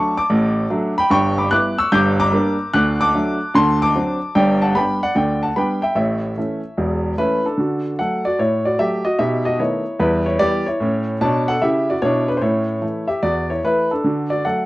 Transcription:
Already playing: F#3 A3 D4 A5 C#6
0.17 A5 D6
0.30 A1 A2
0.70 F#3 A3 D4
0.98 G5 B5
1.10 G1 G2 G5 C#6
1.38 B5 D6
1.51 G3 B3 E4 D6 F#6
1.78 C#6 E6
1.92 G1 G2 D6 G6
2.20 A#5 D6
2.32 G3 A#3 D4
2.73 D2 D3 D6 F#6
3.01 A5 D6
3.14 F#3 A3 D4
3.54 D2 D3 A5 C6
3.82 A5 D6
3.96 F#3 C4 D4
4.35 G1 G2 D5 G5
4.62 F#5 A5
4.75 G3 B3 D4 G5 B5
5.03 D5 F#5
5.15 D2 D3 D5 G5
5.43 F#5 A5
5.56 G3 B3 D4 G5 B5
5.82 E5 G5
5.95 A1 A2 C#5 E5
6.37 E3 A3 C#4
6.78 E1 E2
7.17 E3 A3 C#4 E4 B4
7.46 D4 A4
7.58 D3 F#4
7.99 F#3 A3 A4 F#5
8.25 F#4 D5
8.39 A2 E4 C#5
8.66 F#4 D5
8.79 F#3 A3 G4 E5
9.05 F#4 D#5
9.19 B2 D#4 G4 E5
9.45 F#4 D#5
9.59 D#3 A3 B3 E4 C#5
10.00 E2 G3 E4 B4
10.26 E4 C#5
10.39 E3 G3 B3 G4 D5
10.66 E4 C#5
10.80 A2 C#4
11.21 B2 D4 C#5 A5
11.48 A4 F#5
11.62 C#3 E4 G4 E5
11.90 F#4 D5
12.02 B2 D4 E4 C#5
12.28 D4 B4
12.37 C5
12.41 A2 C#4 E4 C#5
12.81 E3 A3
13.07 G4 E5
13.23 E2 F#4 D5
13.50 E4 C#5
13.64 E3 A3 E4 B4
13.91 D4 A4
14.04 D3 F#4
14.30 F#4 D5
14.45 F#3 A3 A4 F#5

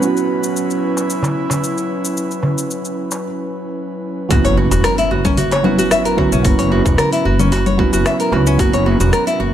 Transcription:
Already playing: F#3 C#4 B4
0.00 B3 C#4 E4, shaker
0.04 F#4
0.17 shaker
0.44 shaker
0.57 shaker
0.70 shaker
0.97 darbuka ka, shaker
1.10 shaker
1.23 darbuka tek, darbuka dum, shaker
1.50 darbuka ka, darbuka tek, darbuka dum, shaker
1.64 shaker
1.78 shaker
2.05 shaker
2.17 shaker
2.31 shaker
2.43 darbuka tek, darbuka dum
2.58 shaker
2.71 shaker
2.85 shaker
3.11 darbuka ka, shaker
4.29 F#1 F#3 B3 C#4 E4 F#4, kick, open hi-hat, impact, shaker
4.44 F#1 C#5, open hi-hat, darbuka ka, shaker
4.57 F#4, darbuka tek
4.71 E1 F#4, open hi-hat, darbuka ka, shaker
4.84 A#4, cross-stick, open hi-hat, shaker
4.98 E4, open hi-hat, shaker
5.11 F#1 F#4, darbuka ka
5.25 C#4, kick, open hi-hat, low conga, shaker
5.37 F#4, open hi-hat, darbuka dum, shaker
5.51 C#5, open hi-hat, darbuka ka, darbuka tek, shaker
5.63 F#3 B3 C#4 E4 F#4, low conga
5.79 F#4, open hi-hat, shaker
5.91 E5, cross-stick, open hi-hat, shaker
6.05 A#4, open hi-hat, shaker
6.17 F#3 B3 C#4 E4 F#4, kick, darbuka dum
6.32 B1 C#4, shaker
6.43 F#1 F#3 B3 C#4 F#4, kick, open hi-hat, shaker
6.47 E4
6.59 F#1 C#5, open hi-hat, darbuka ka, shaker
6.71 F#4, darbuka tek
6.85 E1 F#4, kick, open hi-hat, darbuka ka, shaker
6.98 A#4, cross-stick, open hi-hat, darbuka dum, shaker
7.12 E4, open hi-hat, shaker
7.25 F#1 F#4
7.39 C#4, open hi-hat, darbuka dum, low conga, shaker
7.52 F#4, open hi-hat, darbuka tek, shaker
7.66 C#5, open hi-hat, low conga, shaker
7.78 F#3 B3 C#4 E4 F#4, kick, low conga
7.93 F#1 F#4, open hi-hat, darbuka ka, shaker
8.06 E5, cross-stick, open hi-hat, darbuka tek, shaker
8.20 A#4, open hi-hat, shaker
8.31 C#2 F#3 B3 C#4 E4 F#4, darbuka ka, darbuka tek
8.47 C#4, shaker
8.58 F#1 F#3 B3 C#4 E4 F#4, kick, open hi-hat, shaker
8.73 F#1 C#5, open hi-hat, darbuka ka, shaker
8.86 F#4, darbuka tek
9.00 E1 F#4, open hi-hat, darbuka ka, shaker
9.13 A#4, cross-stick, open hi-hat, shaker
9.27 E4, open hi-hat, shaker
9.40 F#1 F#4, darbuka ka

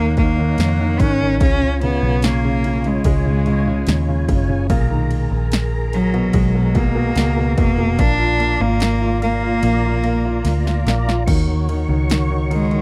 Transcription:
Already playing: D#2 D#3 A#3 D#4 C#5 F#5
0.17 D#3 A#3, kick, ride
0.39 D#3
0.58 F2 D#3, snare, ride
0.80 D#3
1.00 G#1 D#3 C#4, kick, ride
1.21 D#3
1.41 C#2 C#3 C#4 F4 C#5 G#5, kick, ride
1.62 C#3
1.81 C#3 B3, ride
2.03 B1 C#3
2.22 C#3 A#3, snare, ride
2.45 C#3
2.64 C#3, ride
2.84 C#3 G#3, ride
3.04 C#2 G#3, kick, ride
3.26 C#3
3.46 C#3, ride
3.67 C#3
3.87 D#2 C#3, snare, ride
4.08 C#3
4.28 F#1 C#3, kick, ride
4.49 C#3
4.70 B1 A#2 G#4 A#4 A#5, kick, ride
4.90 D#3
5.11 ride
5.31 A#1
5.52 snare, ride
5.93 F#3, ride
6.14 B2, ride
6.33 B1 G#3, kick, ride
6.54 B2
6.74 B2 A#3, kick, ride
6.95 B2
7.16 C#2 B2, snare, ride
7.37 B2
7.58 F1 B2 A#3, kick, ride
7.78 B2
7.99 A#1 A#3 D4 F4 D5, kick, ride
8.19 F4
8.39 A#3, ride
8.60 G#1 A#3 F4
8.80 A#3, snare, ride
9.01 F4
9.22 A#3, ride
9.43 F4
9.63 A#1 A#3, ride
9.84 F4
10.04 A#3, ride
10.25 F4
10.45 D2 A#3, snare, ride
10.66 F4, snare
10.86 A#1 A#3, snare, ride
11.07 F4, snare
11.27 D#2 D#3 F#4 C#5 C#6, kick, crash
11.48 D#3
11.69 D#3, ride
11.89 C#2 D#3
12.10 D#3, snare, ride
12.30 D#3
12.50 D#3 G#3, ride
12.71 D#3, ride

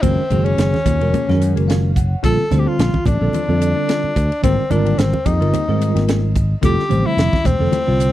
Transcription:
0.02 F#1 D#3 F3 G#3 A#3 C4 C#4 F#4 G#4 A#4, kick, hi-hat pedal, ride
0.18 muted clean electric guitar stroke
0.30 F#1 D#3 G#3 C#4 F#4 G#4, muted clean electric guitar stroke, hi-hat pedal, ride, high conga, low conga
0.45 A#3 C#4 G#4, ride
0.58 F#1, snare, hi-hat pedal, ride
0.74 snare, high conga
0.86 D#2 F3 A#3 C#4 G#4, kick, hi-hat pedal, ride, high conga, low conga
1.00 F1 D#3 G#3 C#4 F#4 A#4, muted clean electric guitar stroke, ride
1.13 F3 A#3 C#4 G#4, hi-hat pedal, ride, high conga, low conga
1.28 F#2 D#3 G#3 C#4 F#4 A#4, snare, high conga
1.41 muted clean electric guitar stroke, hi-hat pedal, ride
1.56 F#1 A#3 C#4 G#4, ride
1.68 F3 A#3 C#4 G#4 F5, snare, hi-hat pedal, ride
1.83 muted clean electric guitar stroke
1.96 F#5, muted clean electric guitar stroke, kick, hi-hat pedal, ride, low conga
2.23 A#1 D3 F3 G3 C4 D4 F4 A4, kick, hi-hat pedal, ride
2.38 muted clean electric guitar stroke
2.50 D2 D3 G3 C4 F4 C5, muted clean electric guitar stroke, hi-hat pedal, ride, high conga, low conga
2.59 G4
2.66 C4 D4 F4 A4
2.78 A#1, muted clean electric guitar stroke, snare, hi-hat pedal, ride
2.94 kick, high conga
3.06 A1 F3 C4 D4 A4, kick, hi-hat pedal, ride, high conga, low conga
3.20 A#1 D3 G3 C4 F4 A4
3.33 F3 C4 D4 A4, muted fretless electric bass stroke, hi-hat pedal, ride, high conga
3.48 F2 D3 G3 C4 F4 A4
3.61 muted clean electric guitar stroke, hi-hat pedal, ride
3.76 C4 D4 A4
3.88 F3 C4 D4 A4, snare, hi-hat pedal, ride
4.04 muted fretless electric bass stroke, muted clean electric guitar stroke
4.16 D2, muted clean electric guitar stroke, kick, hi-hat pedal, ride, low conga
4.32 ride
4.42 G#1 D3 D#3 G3 A#3 C4 F4 G4 A#4, kick, hi-hat pedal, ride
4.70 G#1 D3 G3 C4 D4 F4 A#4, muted clean electric guitar stroke, hi-hat pedal, ride, high conga, low conga
4.85 A#3 C4 G4, ride
4.98 G#1 C4, snare, hi-hat pedal, ride
5.14 high conga
5.26 F2 D#3 A#3 C4 D#4 G4, kick, hi-hat pedal, ride, high conga, low conga
5.40 G1 D3 G3 C4 F4 A#4, muted clean electric guitar stroke, ride
5.53 D#3 A#3 C4 G4, hi-hat pedal, ride, high conga
5.68 G#2 D#3 G3 C4 F4 A#4
5.80 muted clean electric guitar stroke, hi-hat pedal, ride
5.95 G#1 A#3 C4 G4, snare, ride
6.07 D#3 A#3 C4 G4, snare, hi-hat pedal, ride
6.23 muted clean electric guitar stroke
6.35 muted clean electric guitar stroke, kick, hi-hat pedal, ride, low conga
6.62 F1 D3 E3 G3 A3 C4 F4 G4 A4, kick, hi-hat pedal, ride
6.77 muted clean electric guitar stroke, snare
6.89 A1 D3 F3 G3 C4 C5, muted clean electric guitar stroke, hi-hat pedal, ride, low conga
7.05 A3 C4 E4 G4
7.17 F1, snare, hi-hat pedal, ride
7.33 kick, snare, high conga
7.44 E1 E3 A3 C4 G4, kick, hi-hat pedal, ride, high conga, low conga
7.59 F1 D3 G3 C4 F4 A4, muted clean electric guitar stroke
7.71 E3 A3 C4 G4, hi-hat pedal, ride, high conga
7.86 C2 D3 G3 C4 F4 C5, muted clean electric guitar stroke
7.99 muted clean electric guitar stroke, hi-hat pedal, ride

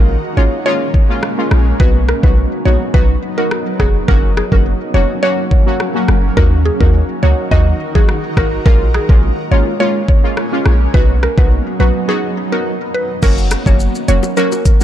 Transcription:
Already playing: A#1 G#3 A#3 C#4 F4
0.37 G#1 G#3 A#3 C#4 F4 C#5
0.65 G#3 A#3 C#4 F4 C#5
0.94 kick
1.09 G#3 A#3 C#4 F4
1.23 cross-stick
1.38 G#3 A#3 C#4 F4
1.51 A#1, cross-stick
1.79 B1 F#3 B3 D#4 F#4 B4, kick
2.08 A#4, cross-stick
2.23 B1 F#3 B3 D#4 F#4 B4, kick
2.65 A#1 F#3 B3 D#4 F#4 C#5
2.94 B1 F#3 B3 D#4 F#4 B4, kick
3.37 F#3 B3 D#4 F#4 A#4
3.51 cross-stick
3.79 F1 F#3 B3 D#4 F#4 G#4, kick, cross-stick
4.08 F#1 F#3 A#3 C#4 F#4 A#4, kick
4.37 G#4, cross-stick
4.52 F#1 F#3 A#3 C#4 F#4 A#4, kick
4.94 F1 F#3 A#3 C#4 F#4 C#5
5.22 F#3 A#3 C#4 F#4 C#5
5.51 kick
5.66 F#3 A#3 C#4 F#4
5.80 cross-stick
5.94 F#3 A#3 C#4 F#4
6.08 F#1, cross-stick
6.36 D#2 D#3 F#3 A#3 D#4 F#4 A#4, kick
6.65 G#4
6.80 D#2 F#3 A#3 D#4 F#4 A#4, kick
7.22 C#2 F#3 A#3 D#4 F#4 C#5
7.51 D#2 F#3 A#3 D#4 F#4 D#5, kick
7.95 F#3 A#3 D#4 F#4 G#4, kick
8.09 cross-stick
8.37 G#1 F#3 A#3 D#4 F#4 A#4, kick, cross-stick
8.65 A#1 G#3 A#3 C#4 F4 A#4, kick
8.94 G#4, cross-stick
9.09 A#1 G#3 A#3 C#4 F4 A#4, kick
9.51 G#1 G#3 A#3 C#4 F4 C#5
9.80 G#3 A#3 C#4 F4 C#5
10.09 kick
10.23 G#3 A#3 C#4 F4
10.37 cross-stick
10.52 G#3 A#3 C#4 F4
10.66 A#1, cross-stick
10.94 B1 F#3 B3 D#4 F#4 B4, kick
11.23 A#4, cross-stick
11.38 B1 F#3 B3 D#4 F#4 B4, kick
11.79 A#1 F#3 B3 D#4 F#4 B4
12.08 F#3 B3 D#4 F#4 G#4
12.52 F#3 B3 D#4 F#4 A#4
12.94 B4
13.22 F#1 F#3 A#3 C#4 F#4 A#4, kick, crash, shaker
13.38 shaker
13.51 cross-stick, closed hi-hat, shaker
13.66 F#1 F#3 A#3 C#4 F#4 C#5, kick, shaker
13.80 shaker
13.95 shaker
14.08 F1 F#3 A#3 C#4 F#4 C#5, closed hi-hat, shaker
14.23 high bongo, shaker
14.37 F#3 A#3 C#4 F#4 A#4, high bongo, shaker
14.52 high bongo, shaker
14.65 kick, closed hi-hat, shaker
14.80 F#3 A#3 C#4 F#4, shaker

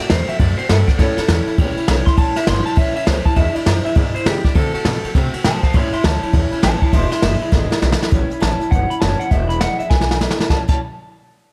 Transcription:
0.00 A3 C4 F#4
0.09 E2 D3 A3 C4 F#4 C5, snare, ride
0.28 A3 C4 F#4 E5, muted upright bass stroke, ride
0.39 F#2 D3 A3 C4 F#4 D5, kick, ride
0.58 A3 C4 F#4 C5, muted upright bass stroke, ride
0.69 G2 D3 A3 C4 F#4 A4, snare, ride
0.87 A3 C4 F#4 D5, muted upright bass stroke, kick, snare, ride
0.98 A2 E3 G3 C#4 E4 A4, kick, snare, ride
1.17 G3 C#4 E4 A4, muted upright bass stroke, snare, ride
1.28 E2 E3 G3 C#4 E4, snare, ride
1.47 G3 C#4 E4, muted upright bass stroke, ride
1.58 C#2 A2 E3 G3 C#4 E4, kick, ride
1.77 G3 C#4 E4, muted upright bass stroke, ride
1.88 B1 E3 G3 C#4 E4, snare, ride
2.06 G3 C#4 E4 C6, kick, snare, ride
2.17 A1 A2 E3 G3 C#4 E4 A5, kick, ride
2.36 G3 C#4 E4 E5, muted upright bass stroke, snare, ride
2.46 G1 E3 G3 C#4 E4 C6, snare, ride
2.66 G3 C#4 E4 A5, muted upright bass stroke, ride
2.76 A1 A2 E3 G3 C#4 E4 E5, kick, ride
2.94 G3 C#4 E4 E5, muted upright bass stroke, ride
3.05 C#2 E3 G3 C#4 E4 C5, snare, ride
3.24 G3 C#4 E4 A5, kick, ride
3.36 E2 B2 E3 G#3 D4 E4 E5, kick, ride
3.54 E3 G#3 D4 E4 D5, muted upright bass stroke, ride
3.65 F#2 E3 G#3 D4 E4 C5, snare, ride
3.84 E3 G#3 D4 E4 E5, muted upright bass stroke, ride
3.95 E2 G#2 B2 E3 G#3 D4 E4 D5, kick, ride
4.14 E3 G#3 D4 E4 C5, muted upright bass stroke, ride
4.25 C#3 E3 G#3 D4 E4 G4, snare, ride
4.44 E3 G#3 D4 E4 D5, kick, snare, ride
4.54 D3 A3 C4 F#4 A4, kick, ride
4.74 A3 C4 F#4 A4, muted upright bass stroke, ride
4.85 B2 D3 A3 C4 F#4, snare, ride
5.04 A3 C4 F#4, muted upright bass stroke, ride
5.15 C3 D3 A3 C4 F#4, kick, snare, ride
5.33 A3 C4 F#4, muted upright bass stroke, ride
5.44 B2 D3 A3 C4 F#4 C5 A5, snare, ride
5.63 A3 C4 F#4 C5 A5, muted upright bass stroke, kick, snare, ride
5.73 A2 E3 G3 C#4 E4 E5 C6, kick, ride
5.93 G3 C#4 E4 E5 C6, muted upright bass stroke, ride
6.03 D2 E3 G3 C#4 E4 A5, snare, ride
6.22 G3 C#4 E4, muted upright bass stroke, ride
6.33 E2 A2 E3 G3 C#4 E4, kick, ride
6.52 G3 C#4 E4, muted upright bass stroke, ride
6.62 A1 E3 G3 C#4 E4 C#5 A5, snare, ride
6.82 G3 C#4 E4 C#5 A5, muted upright bass stroke, kick, ride
6.92 E1 E2 B2 E3 G#3 D4 E4 E5 C6, kick, snare, ride
7.11 E3 G#3 D4 E4 E5 C6, muted upright bass stroke, snare, ride
7.22 F#1 E3 G#3 D4 E4 E5, snare, ride
7.40 E3 G#3 D4 E4, muted upright bass stroke, ride
7.51 G#1 E2 B2 E3 G#3 D4 E4, kick, snare
7.70 E3 G#3 D4 E4, muted upright bass stroke, snare
7.81 B1 E3 G#3 D4 E4, snare
7.92 snare
8.00 E3 G#3 D4 E4, muted upright bass stroke, snare
8.11 A1 A2 E3 G3 C#4 E4, kick, snare, closed hi-hat
8.30 G3 C#4 E4, muted upright bass stroke, closed hi-hat
8.40 A1 A2 E3 G3 C#4 E4 A5, snare, closed hi-hat
8.60 G3 C#4 E4, muted upright bass stroke, closed hi-hat
8.71 G1 E3 G3 C#4 E4 F#5, kick, closed hi-hat
8.90 G3 C#4 E4 B5, muted upright bass stroke, closed hi-hat
9.01 F#1 A2 E3 G3 C#4 E4 A5, snare, closed hi-hat
9.20 G3 C#4 E4 F#5, closed hi-hat
9.31 E1 E2 B2 E3 G#3 D4 E4 E5, kick, closed hi-hat
9.49 E3 G#3 D4 E4 B5, closed hi-hat
9.60 E2 B2 E3 G#3 D4 E4 F#5, snare, closed hi-hat
9.79 E3 G#3 D4 E4 E5, muted upright bass stroke, closed hi-hat
9.90 B1 E3 G#3 D4 E4 G#5, kick, snare
10.01 snare
10.10 E3 G#3 D4 E4, snare
10.20 E2 B2 E3 G#3 D4 E4, snare
10.31 snare
10.39 E3 G#3 D4 E4, muted upright bass stroke, snare
10.50 A1 A2 E3 G3 C#4 F#4 A5, kick, snare
10.68 A1 A2 E3 G3 C#4 F#4 A5, kick, crash

